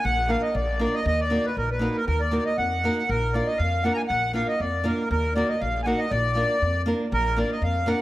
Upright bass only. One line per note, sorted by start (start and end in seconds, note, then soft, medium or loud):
0.05 0.35 A#1 loud
0.55 0.85 A#1 medium
1.06 1.36 D#2 loud
1.57 1.87 A#1 medium
2.08 2.38 D#2 medium
2.58 2.88 F2 medium
3.09 3.39 A#1 medium
3.60 3.90 F2 medium
4.10 4.40 A#1 loud
4.60 4.90 F2 medium
5.11 5.41 D#2 loud
5.61 5.92 A#1 medium
6.11 6.42 A#1 loud
6.62 6.92 F2 medium
7.12 7.42 A#1 loud
7.62 7.92 F2 medium